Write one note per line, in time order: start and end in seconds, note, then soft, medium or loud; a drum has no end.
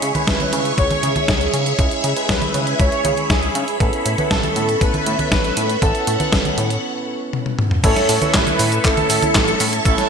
0.00 0.12 C#3 medium
0.00 0.12 G#3 medium
0.00 0.12 C#4 medium
0.00 0.12 E4 medium
0.00 0.12 G#4 medium
0.00 3.76 G#4 medium
0.00 6.79 C#5 medium
0.00 3.76 E5 medium
0.00 1.77 C#6 medium
0.00 closed hi-hat medium
0.15 1.76 G#3 medium
0.15 1.76 C#4 medium
0.15 1.76 E4 medium
0.15 1.76 B4 medium
0.15 closed hi-hat soft
0.15 high conga medium
0.27 0.37 C#2 medium
0.27 0.79 B4 loud
0.27 kick loud
0.27 snare loud
0.27 closed hi-hat medium
0.40 closed hi-hat soft
0.40 high conga medium
0.53 0.72 C#3 medium
0.53 closed hi-hat medium
0.65 closed hi-hat soft
0.78 0.88 C#2 loud
0.78 1.30 C#5 loud
0.78 kick loud
0.78 closed hi-hat medium
0.91 closed hi-hat soft
0.91 high conga medium
1.03 1.13 C#3 medium
1.03 closed hi-hat medium
1.16 closed hi-hat soft
1.16 high conga medium
1.28 1.48 C#2 medium
1.28 1.75 G#4 medium
1.28 kick loud
1.28 snare loud
1.28 closed hi-hat medium
1.41 closed hi-hat soft
1.54 1.73 C#3 medium
1.54 closed hi-hat medium
1.66 closed hi-hat soft
1.79 1.89 C#2 medium
1.79 2.13 G#3 medium
1.79 2.14 C#4 medium
1.79 2.13 E4 medium
1.79 2.14 G#4 medium
1.79 6.79 B5 medium
1.79 kick loud
1.79 closed hi-hat medium
1.91 closed hi-hat soft
2.04 2.14 C#3 medium
2.04 closed hi-hat medium
2.17 3.77 G#3 medium
2.17 3.77 C#4 medium
2.17 3.77 E4 medium
2.17 3.77 B4 medium
2.17 closed hi-hat soft
2.29 2.39 C#2 medium
2.29 2.76 B4 loud
2.29 kick loud
2.29 snare loud
2.29 closed hi-hat medium
2.42 closed hi-hat soft
2.42 high conga medium
2.54 2.74 C#3 medium
2.54 closed hi-hat medium
2.67 closed hi-hat soft
2.79 2.89 C#2 medium
2.79 3.31 C#5 loud
2.79 kick loud
2.79 closed hi-hat medium
2.92 closed hi-hat soft
3.05 3.15 C#3 medium
3.05 closed hi-hat medium
3.05 high conga medium
3.17 closed hi-hat soft
3.30 3.50 C#2 medium
3.30 3.77 G#4 medium
3.30 kick loud
3.30 snare loud
3.30 closed hi-hat medium
3.43 closed hi-hat soft
3.55 3.65 C#3 medium
3.55 closed hi-hat medium
3.68 closed hi-hat soft
3.80 3.90 A1 loud
3.80 4.15 B3 medium
3.80 4.15 C#4 medium
3.80 4.15 E4 medium
3.80 4.15 A4 medium
3.80 6.80 A4 medium
3.80 5.80 E5 medium
3.80 kick loud
3.80 closed hi-hat medium
3.93 closed hi-hat soft
4.06 4.15 A2 medium
4.06 closed hi-hat medium
4.18 5.79 B3 medium
4.18 5.79 C#4 medium
4.18 5.79 E4 medium
4.18 5.79 B4 medium
4.18 closed hi-hat soft
4.18 high conga medium
4.31 4.41 A1 medium
4.31 4.83 A4 loud
4.31 kick loud
4.31 snare loud
4.31 closed hi-hat medium
4.43 closed hi-hat soft
4.43 high conga medium
4.56 4.76 A2 medium
4.56 closed hi-hat medium
4.69 closed hi-hat soft
4.81 4.91 A1 medium
4.81 5.28 B4 loud
4.81 kick loud
4.81 closed hi-hat medium
4.94 closed hi-hat soft
4.94 high conga medium
5.06 5.16 A2 medium
5.06 closed hi-hat medium
5.19 closed hi-hat soft
5.19 high conga medium
5.31 5.51 A1 medium
5.31 5.83 B4 loud
5.31 kick loud
5.31 snare loud
5.31 closed hi-hat medium
5.44 closed hi-hat soft
5.57 5.77 A2 medium
5.57 closed hi-hat medium
5.70 closed hi-hat soft
5.82 5.92 A1 loud
5.82 6.17 B3 medium
5.82 6.17 C#4 medium
5.82 6.17 E4 medium
5.82 6.79 A4 medium
5.82 6.17 A4 loud
5.82 6.82 F#5 medium
5.82 kick loud
5.82 closed hi-hat medium
5.95 closed hi-hat soft
6.07 6.17 A2 medium
6.07 closed hi-hat medium
6.20 7.81 B3 medium
6.20 7.81 C#4 medium
6.20 7.81 E4 medium
6.20 7.81 B4 medium
6.20 closed hi-hat soft
6.20 high conga medium
6.32 6.42 A1 medium
6.32 kick loud
6.32 snare loud
6.32 closed hi-hat medium
6.45 closed hi-hat soft
6.45 high conga medium
6.58 6.77 A2 medium
6.58 closed hi-hat medium
6.70 closed hi-hat soft
7.33 high tom medium
7.46 high tom medium
7.59 mid tom medium
7.71 mid tom medium
7.84 7.94 A1 loud
7.84 8.19 A3 medium
7.84 8.19 C#4 medium
7.84 8.19 E4 medium
7.84 8.19 A4 medium
7.84 10.09 A4 medium
7.84 8.31 A4 medium
7.84 10.09 C#5 medium
7.84 8.36 C#5 loud
7.84 9.83 E5 medium
7.84 10.09 C#6 medium
7.84 kick loud
7.84 closed hi-hat medium
7.84 crash loud
7.84 cabasa soft
7.96 snare soft
7.96 closed hi-hat soft
7.96 cabasa soft
8.09 8.19 A2 medium
8.09 open hi-hat loud
8.09 cabasa medium
8.21 9.82 A3 medium
8.21 9.82 C#4 medium
8.21 9.82 E4 medium
8.21 9.82 B4 medium
8.21 closed hi-hat soft
8.21 high conga medium
8.21 cabasa soft
8.34 8.44 A1 medium
8.34 8.81 E4 medium
8.34 8.86 B4 loud
8.34 kick loud
8.34 snare loud
8.34 clap loud
8.34 closed hi-hat medium
8.34 cabasa soft
8.47 closed hi-hat soft
8.47 high conga medium
8.47 cabasa soft
8.59 8.79 A2 medium
8.59 open hi-hat loud
8.59 cabasa medium
8.72 closed hi-hat soft
8.72 cabasa soft
8.85 8.94 A1 medium
8.85 9.82 E4 medium
8.85 9.84 A4 loud
8.85 kick loud
8.85 clap medium
8.85 closed hi-hat medium
8.85 cabasa soft
8.97 closed hi-hat soft
8.97 high conga medium
9.10 9.20 A2 medium
9.10 open hi-hat loud
9.10 cabasa medium
9.22 closed hi-hat soft
9.22 high conga medium
9.22 cabasa soft
9.35 9.55 A1 medium
9.35 kick loud
9.35 snare loud
9.35 clap loud
9.35 closed hi-hat medium
9.35 cabasa soft
9.48 closed hi-hat soft
9.48 cabasa soft
9.60 9.80 A2 medium
9.60 open hi-hat loud
9.60 cabasa medium
9.73 closed hi-hat soft
9.73 cabasa soft
9.85 9.95 A1 loud
9.85 10.09 A3 medium
9.85 10.09 C#4 medium
9.85 10.09 E4 medium
9.85 10.09 A4 loud
9.85 10.09 A4 medium
9.85 10.09 F#5 medium
9.85 kick loud
9.85 closed hi-hat medium
9.85 cabasa soft
9.98 snare soft
9.98 closed hi-hat soft
9.98 cabasa soft